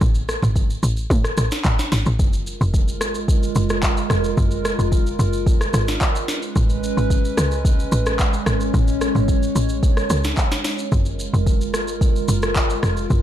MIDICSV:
0, 0, Header, 1, 4, 480
1, 0, Start_track
1, 0, Key_signature, 6, "major"
1, 0, Tempo, 545455
1, 11, Time_signature, 4, 2, 24, 8
1, 11635, End_track
2, 0, Start_track
2, 0, Title_t, "Analog synth pad"
2, 0, Program_c, 0, 89
2, 1929, Note_on_c, 0, 56, 90
2, 1930, Note_on_c, 0, 65, 81
2, 1930, Note_on_c, 0, 70, 92
2, 5495, Note_off_c, 0, 56, 0
2, 5495, Note_off_c, 0, 65, 0
2, 5495, Note_off_c, 0, 70, 0
2, 5528, Note_on_c, 0, 61, 80
2, 5529, Note_on_c, 0, 56, 87
2, 5529, Note_on_c, 0, 71, 94
2, 7430, Note_off_c, 0, 71, 0
2, 7450, Note_on_c, 0, 73, 94
2, 9574, Note_off_c, 0, 56, 0
2, 9574, Note_off_c, 0, 61, 0
2, 9589, Note_off_c, 0, 73, 0
2, 9610, Note_on_c, 0, 56, 91
2, 9610, Note_on_c, 0, 70, 96
2, 9612, Note_on_c, 0, 65, 78
2, 11635, Note_off_c, 0, 56, 0
2, 11635, Note_off_c, 0, 65, 0
2, 11635, Note_off_c, 0, 70, 0
2, 11635, End_track
3, 0, Start_track
3, 0, Title_t, "Log drum bass"
3, 0, Program_c, 1, 39
3, 11, Note_on_c, 1, 33, 104
3, 326, Note_off_c, 1, 33, 0
3, 375, Note_on_c, 1, 32, 91
3, 683, Note_off_c, 1, 32, 0
3, 729, Note_on_c, 1, 33, 89
3, 938, Note_off_c, 1, 33, 0
3, 969, Note_on_c, 1, 45, 113
3, 1078, Note_off_c, 1, 45, 0
3, 1210, Note_on_c, 1, 33, 91
3, 1318, Note_off_c, 1, 33, 0
3, 1450, Note_on_c, 1, 33, 94
3, 1558, Note_off_c, 1, 33, 0
3, 1690, Note_on_c, 1, 32, 90
3, 1798, Note_off_c, 1, 32, 0
3, 1816, Note_on_c, 1, 33, 88
3, 1930, Note_on_c, 1, 30, 117
3, 1944, Note_off_c, 1, 33, 0
3, 2246, Note_off_c, 1, 30, 0
3, 2296, Note_on_c, 1, 29, 96
3, 2650, Note_on_c, 1, 32, 95
3, 2663, Note_off_c, 1, 29, 0
3, 3066, Note_off_c, 1, 32, 0
3, 3130, Note_on_c, 1, 30, 88
3, 3546, Note_off_c, 1, 30, 0
3, 3610, Note_on_c, 1, 29, 91
3, 3818, Note_off_c, 1, 29, 0
3, 3850, Note_on_c, 1, 30, 117
3, 4166, Note_off_c, 1, 30, 0
3, 4214, Note_on_c, 1, 29, 81
3, 4522, Note_off_c, 1, 29, 0
3, 4569, Note_on_c, 1, 30, 96
3, 4985, Note_off_c, 1, 30, 0
3, 5048, Note_on_c, 1, 32, 88
3, 5257, Note_off_c, 1, 32, 0
3, 5771, Note_on_c, 1, 33, 103
3, 6087, Note_off_c, 1, 33, 0
3, 6136, Note_on_c, 1, 32, 84
3, 6443, Note_off_c, 1, 32, 0
3, 6491, Note_on_c, 1, 37, 93
3, 6906, Note_off_c, 1, 37, 0
3, 6970, Note_on_c, 1, 33, 91
3, 7385, Note_off_c, 1, 33, 0
3, 7450, Note_on_c, 1, 32, 78
3, 7658, Note_off_c, 1, 32, 0
3, 7691, Note_on_c, 1, 33, 106
3, 8006, Note_off_c, 1, 33, 0
3, 8054, Note_on_c, 1, 32, 91
3, 8362, Note_off_c, 1, 32, 0
3, 8409, Note_on_c, 1, 33, 89
3, 8825, Note_off_c, 1, 33, 0
3, 8889, Note_on_c, 1, 37, 91
3, 9097, Note_off_c, 1, 37, 0
3, 9610, Note_on_c, 1, 30, 116
3, 9926, Note_off_c, 1, 30, 0
3, 9975, Note_on_c, 1, 29, 98
3, 10331, Note_on_c, 1, 32, 92
3, 10344, Note_off_c, 1, 29, 0
3, 10746, Note_off_c, 1, 32, 0
3, 10810, Note_on_c, 1, 30, 83
3, 11226, Note_off_c, 1, 30, 0
3, 11291, Note_on_c, 1, 29, 94
3, 11499, Note_off_c, 1, 29, 0
3, 11531, Note_on_c, 1, 30, 114
3, 11635, Note_off_c, 1, 30, 0
3, 11635, End_track
4, 0, Start_track
4, 0, Title_t, "Drums"
4, 9, Note_on_c, 9, 82, 72
4, 11, Note_on_c, 9, 36, 125
4, 97, Note_off_c, 9, 82, 0
4, 99, Note_off_c, 9, 36, 0
4, 130, Note_on_c, 9, 82, 59
4, 218, Note_off_c, 9, 82, 0
4, 252, Note_on_c, 9, 82, 81
4, 253, Note_on_c, 9, 37, 94
4, 340, Note_off_c, 9, 82, 0
4, 341, Note_off_c, 9, 37, 0
4, 373, Note_on_c, 9, 45, 95
4, 379, Note_on_c, 9, 82, 55
4, 461, Note_off_c, 9, 45, 0
4, 467, Note_off_c, 9, 82, 0
4, 490, Note_on_c, 9, 36, 98
4, 492, Note_on_c, 9, 82, 70
4, 578, Note_off_c, 9, 36, 0
4, 580, Note_off_c, 9, 82, 0
4, 617, Note_on_c, 9, 82, 55
4, 705, Note_off_c, 9, 82, 0
4, 731, Note_on_c, 9, 82, 92
4, 819, Note_off_c, 9, 82, 0
4, 850, Note_on_c, 9, 82, 60
4, 938, Note_off_c, 9, 82, 0
4, 969, Note_on_c, 9, 36, 124
4, 974, Note_on_c, 9, 82, 79
4, 1057, Note_off_c, 9, 36, 0
4, 1062, Note_off_c, 9, 82, 0
4, 1095, Note_on_c, 9, 37, 91
4, 1098, Note_on_c, 9, 82, 54
4, 1183, Note_off_c, 9, 37, 0
4, 1186, Note_off_c, 9, 82, 0
4, 1208, Note_on_c, 9, 82, 106
4, 1212, Note_on_c, 9, 37, 89
4, 1296, Note_off_c, 9, 82, 0
4, 1300, Note_off_c, 9, 37, 0
4, 1332, Note_on_c, 9, 82, 64
4, 1337, Note_on_c, 9, 38, 69
4, 1420, Note_off_c, 9, 82, 0
4, 1425, Note_off_c, 9, 38, 0
4, 1445, Note_on_c, 9, 82, 76
4, 1450, Note_on_c, 9, 36, 87
4, 1451, Note_on_c, 9, 39, 93
4, 1533, Note_off_c, 9, 82, 0
4, 1538, Note_off_c, 9, 36, 0
4, 1539, Note_off_c, 9, 39, 0
4, 1575, Note_on_c, 9, 82, 58
4, 1577, Note_on_c, 9, 38, 65
4, 1663, Note_off_c, 9, 82, 0
4, 1665, Note_off_c, 9, 38, 0
4, 1689, Note_on_c, 9, 38, 72
4, 1692, Note_on_c, 9, 46, 66
4, 1692, Note_on_c, 9, 82, 77
4, 1777, Note_off_c, 9, 38, 0
4, 1780, Note_off_c, 9, 46, 0
4, 1780, Note_off_c, 9, 82, 0
4, 1812, Note_on_c, 9, 82, 54
4, 1900, Note_off_c, 9, 82, 0
4, 1929, Note_on_c, 9, 82, 74
4, 1930, Note_on_c, 9, 36, 127
4, 2017, Note_off_c, 9, 82, 0
4, 2018, Note_off_c, 9, 36, 0
4, 2051, Note_on_c, 9, 82, 56
4, 2139, Note_off_c, 9, 82, 0
4, 2171, Note_on_c, 9, 82, 77
4, 2259, Note_off_c, 9, 82, 0
4, 2297, Note_on_c, 9, 82, 56
4, 2385, Note_off_c, 9, 82, 0
4, 2409, Note_on_c, 9, 36, 101
4, 2411, Note_on_c, 9, 82, 74
4, 2497, Note_off_c, 9, 36, 0
4, 2499, Note_off_c, 9, 82, 0
4, 2535, Note_on_c, 9, 82, 55
4, 2623, Note_off_c, 9, 82, 0
4, 2647, Note_on_c, 9, 37, 100
4, 2651, Note_on_c, 9, 82, 97
4, 2735, Note_off_c, 9, 37, 0
4, 2739, Note_off_c, 9, 82, 0
4, 2769, Note_on_c, 9, 82, 65
4, 2857, Note_off_c, 9, 82, 0
4, 2889, Note_on_c, 9, 36, 120
4, 2894, Note_on_c, 9, 82, 73
4, 2977, Note_off_c, 9, 36, 0
4, 2982, Note_off_c, 9, 82, 0
4, 3017, Note_on_c, 9, 82, 55
4, 3105, Note_off_c, 9, 82, 0
4, 3127, Note_on_c, 9, 82, 97
4, 3215, Note_off_c, 9, 82, 0
4, 3252, Note_on_c, 9, 82, 64
4, 3258, Note_on_c, 9, 37, 94
4, 3340, Note_off_c, 9, 82, 0
4, 3346, Note_off_c, 9, 37, 0
4, 3365, Note_on_c, 9, 82, 78
4, 3369, Note_on_c, 9, 36, 86
4, 3371, Note_on_c, 9, 39, 96
4, 3453, Note_off_c, 9, 82, 0
4, 3457, Note_off_c, 9, 36, 0
4, 3459, Note_off_c, 9, 39, 0
4, 3494, Note_on_c, 9, 82, 57
4, 3582, Note_off_c, 9, 82, 0
4, 3607, Note_on_c, 9, 37, 102
4, 3610, Note_on_c, 9, 82, 83
4, 3695, Note_off_c, 9, 37, 0
4, 3698, Note_off_c, 9, 82, 0
4, 3731, Note_on_c, 9, 82, 57
4, 3819, Note_off_c, 9, 82, 0
4, 3848, Note_on_c, 9, 82, 74
4, 3850, Note_on_c, 9, 36, 125
4, 3936, Note_off_c, 9, 82, 0
4, 3938, Note_off_c, 9, 36, 0
4, 3969, Note_on_c, 9, 82, 58
4, 4057, Note_off_c, 9, 82, 0
4, 4091, Note_on_c, 9, 82, 84
4, 4092, Note_on_c, 9, 37, 98
4, 4179, Note_off_c, 9, 82, 0
4, 4180, Note_off_c, 9, 37, 0
4, 4217, Note_on_c, 9, 82, 56
4, 4305, Note_off_c, 9, 82, 0
4, 4329, Note_on_c, 9, 36, 97
4, 4330, Note_on_c, 9, 82, 75
4, 4417, Note_off_c, 9, 36, 0
4, 4418, Note_off_c, 9, 82, 0
4, 4457, Note_on_c, 9, 82, 53
4, 4545, Note_off_c, 9, 82, 0
4, 4571, Note_on_c, 9, 82, 90
4, 4659, Note_off_c, 9, 82, 0
4, 4689, Note_on_c, 9, 82, 63
4, 4777, Note_off_c, 9, 82, 0
4, 4809, Note_on_c, 9, 36, 123
4, 4814, Note_on_c, 9, 82, 79
4, 4897, Note_off_c, 9, 36, 0
4, 4902, Note_off_c, 9, 82, 0
4, 4936, Note_on_c, 9, 37, 92
4, 4938, Note_on_c, 9, 82, 54
4, 5024, Note_off_c, 9, 37, 0
4, 5026, Note_off_c, 9, 82, 0
4, 5048, Note_on_c, 9, 82, 105
4, 5051, Note_on_c, 9, 37, 88
4, 5136, Note_off_c, 9, 82, 0
4, 5139, Note_off_c, 9, 37, 0
4, 5172, Note_on_c, 9, 82, 60
4, 5177, Note_on_c, 9, 38, 69
4, 5260, Note_off_c, 9, 82, 0
4, 5265, Note_off_c, 9, 38, 0
4, 5287, Note_on_c, 9, 82, 77
4, 5290, Note_on_c, 9, 36, 92
4, 5292, Note_on_c, 9, 39, 94
4, 5375, Note_off_c, 9, 82, 0
4, 5378, Note_off_c, 9, 36, 0
4, 5380, Note_off_c, 9, 39, 0
4, 5416, Note_on_c, 9, 82, 58
4, 5504, Note_off_c, 9, 82, 0
4, 5529, Note_on_c, 9, 38, 74
4, 5532, Note_on_c, 9, 82, 82
4, 5617, Note_off_c, 9, 38, 0
4, 5620, Note_off_c, 9, 82, 0
4, 5652, Note_on_c, 9, 82, 57
4, 5740, Note_off_c, 9, 82, 0
4, 5771, Note_on_c, 9, 36, 124
4, 5771, Note_on_c, 9, 82, 77
4, 5859, Note_off_c, 9, 36, 0
4, 5859, Note_off_c, 9, 82, 0
4, 5892, Note_on_c, 9, 82, 58
4, 5980, Note_off_c, 9, 82, 0
4, 6014, Note_on_c, 9, 82, 81
4, 6102, Note_off_c, 9, 82, 0
4, 6140, Note_on_c, 9, 82, 55
4, 6228, Note_off_c, 9, 82, 0
4, 6250, Note_on_c, 9, 36, 100
4, 6254, Note_on_c, 9, 82, 70
4, 6338, Note_off_c, 9, 36, 0
4, 6342, Note_off_c, 9, 82, 0
4, 6378, Note_on_c, 9, 82, 56
4, 6466, Note_off_c, 9, 82, 0
4, 6490, Note_on_c, 9, 37, 99
4, 6493, Note_on_c, 9, 82, 98
4, 6578, Note_off_c, 9, 37, 0
4, 6581, Note_off_c, 9, 82, 0
4, 6611, Note_on_c, 9, 82, 61
4, 6699, Note_off_c, 9, 82, 0
4, 6730, Note_on_c, 9, 36, 127
4, 6736, Note_on_c, 9, 82, 81
4, 6818, Note_off_c, 9, 36, 0
4, 6824, Note_off_c, 9, 82, 0
4, 6860, Note_on_c, 9, 82, 54
4, 6948, Note_off_c, 9, 82, 0
4, 6969, Note_on_c, 9, 82, 103
4, 7057, Note_off_c, 9, 82, 0
4, 7093, Note_on_c, 9, 82, 62
4, 7098, Note_on_c, 9, 37, 96
4, 7181, Note_off_c, 9, 82, 0
4, 7186, Note_off_c, 9, 37, 0
4, 7206, Note_on_c, 9, 82, 78
4, 7210, Note_on_c, 9, 36, 91
4, 7212, Note_on_c, 9, 39, 95
4, 7294, Note_off_c, 9, 82, 0
4, 7298, Note_off_c, 9, 36, 0
4, 7300, Note_off_c, 9, 39, 0
4, 7335, Note_on_c, 9, 82, 60
4, 7423, Note_off_c, 9, 82, 0
4, 7448, Note_on_c, 9, 37, 101
4, 7451, Note_on_c, 9, 82, 82
4, 7536, Note_off_c, 9, 37, 0
4, 7539, Note_off_c, 9, 82, 0
4, 7572, Note_on_c, 9, 82, 56
4, 7660, Note_off_c, 9, 82, 0
4, 7690, Note_on_c, 9, 82, 76
4, 7691, Note_on_c, 9, 36, 127
4, 7778, Note_off_c, 9, 82, 0
4, 7779, Note_off_c, 9, 36, 0
4, 7810, Note_on_c, 9, 82, 59
4, 7898, Note_off_c, 9, 82, 0
4, 7931, Note_on_c, 9, 82, 79
4, 7932, Note_on_c, 9, 37, 91
4, 8019, Note_off_c, 9, 82, 0
4, 8020, Note_off_c, 9, 37, 0
4, 8052, Note_on_c, 9, 45, 94
4, 8057, Note_on_c, 9, 82, 54
4, 8140, Note_off_c, 9, 45, 0
4, 8145, Note_off_c, 9, 82, 0
4, 8169, Note_on_c, 9, 36, 99
4, 8170, Note_on_c, 9, 82, 75
4, 8257, Note_off_c, 9, 36, 0
4, 8258, Note_off_c, 9, 82, 0
4, 8295, Note_on_c, 9, 82, 55
4, 8383, Note_off_c, 9, 82, 0
4, 8410, Note_on_c, 9, 82, 94
4, 8498, Note_off_c, 9, 82, 0
4, 8529, Note_on_c, 9, 82, 62
4, 8617, Note_off_c, 9, 82, 0
4, 8649, Note_on_c, 9, 36, 121
4, 8652, Note_on_c, 9, 82, 79
4, 8737, Note_off_c, 9, 36, 0
4, 8740, Note_off_c, 9, 82, 0
4, 8774, Note_on_c, 9, 37, 92
4, 8776, Note_on_c, 9, 82, 52
4, 8862, Note_off_c, 9, 37, 0
4, 8864, Note_off_c, 9, 82, 0
4, 8887, Note_on_c, 9, 82, 106
4, 8890, Note_on_c, 9, 37, 89
4, 8975, Note_off_c, 9, 82, 0
4, 8978, Note_off_c, 9, 37, 0
4, 9011, Note_on_c, 9, 82, 61
4, 9017, Note_on_c, 9, 38, 72
4, 9099, Note_off_c, 9, 82, 0
4, 9105, Note_off_c, 9, 38, 0
4, 9125, Note_on_c, 9, 82, 79
4, 9129, Note_on_c, 9, 36, 88
4, 9130, Note_on_c, 9, 39, 96
4, 9213, Note_off_c, 9, 82, 0
4, 9217, Note_off_c, 9, 36, 0
4, 9218, Note_off_c, 9, 39, 0
4, 9253, Note_on_c, 9, 82, 60
4, 9255, Note_on_c, 9, 38, 63
4, 9341, Note_off_c, 9, 82, 0
4, 9343, Note_off_c, 9, 38, 0
4, 9367, Note_on_c, 9, 38, 73
4, 9371, Note_on_c, 9, 46, 64
4, 9371, Note_on_c, 9, 82, 76
4, 9455, Note_off_c, 9, 38, 0
4, 9459, Note_off_c, 9, 46, 0
4, 9459, Note_off_c, 9, 82, 0
4, 9491, Note_on_c, 9, 82, 56
4, 9579, Note_off_c, 9, 82, 0
4, 9609, Note_on_c, 9, 82, 72
4, 9610, Note_on_c, 9, 36, 122
4, 9697, Note_off_c, 9, 82, 0
4, 9698, Note_off_c, 9, 36, 0
4, 9729, Note_on_c, 9, 82, 60
4, 9817, Note_off_c, 9, 82, 0
4, 9850, Note_on_c, 9, 82, 78
4, 9938, Note_off_c, 9, 82, 0
4, 9978, Note_on_c, 9, 82, 57
4, 10066, Note_off_c, 9, 82, 0
4, 10089, Note_on_c, 9, 36, 98
4, 10091, Note_on_c, 9, 82, 74
4, 10177, Note_off_c, 9, 36, 0
4, 10179, Note_off_c, 9, 82, 0
4, 10217, Note_on_c, 9, 82, 54
4, 10305, Note_off_c, 9, 82, 0
4, 10329, Note_on_c, 9, 37, 101
4, 10332, Note_on_c, 9, 82, 95
4, 10417, Note_off_c, 9, 37, 0
4, 10420, Note_off_c, 9, 82, 0
4, 10451, Note_on_c, 9, 82, 64
4, 10539, Note_off_c, 9, 82, 0
4, 10570, Note_on_c, 9, 36, 122
4, 10575, Note_on_c, 9, 82, 81
4, 10658, Note_off_c, 9, 36, 0
4, 10663, Note_off_c, 9, 82, 0
4, 10698, Note_on_c, 9, 82, 53
4, 10786, Note_off_c, 9, 82, 0
4, 10809, Note_on_c, 9, 82, 104
4, 10897, Note_off_c, 9, 82, 0
4, 10932, Note_on_c, 9, 82, 61
4, 10938, Note_on_c, 9, 37, 97
4, 11020, Note_off_c, 9, 82, 0
4, 11026, Note_off_c, 9, 37, 0
4, 11046, Note_on_c, 9, 82, 79
4, 11050, Note_on_c, 9, 36, 86
4, 11051, Note_on_c, 9, 39, 98
4, 11134, Note_off_c, 9, 82, 0
4, 11138, Note_off_c, 9, 36, 0
4, 11139, Note_off_c, 9, 39, 0
4, 11175, Note_on_c, 9, 82, 61
4, 11263, Note_off_c, 9, 82, 0
4, 11289, Note_on_c, 9, 37, 101
4, 11292, Note_on_c, 9, 82, 77
4, 11377, Note_off_c, 9, 37, 0
4, 11380, Note_off_c, 9, 82, 0
4, 11411, Note_on_c, 9, 82, 56
4, 11499, Note_off_c, 9, 82, 0
4, 11530, Note_on_c, 9, 82, 72
4, 11531, Note_on_c, 9, 36, 127
4, 11618, Note_off_c, 9, 82, 0
4, 11619, Note_off_c, 9, 36, 0
4, 11635, End_track
0, 0, End_of_file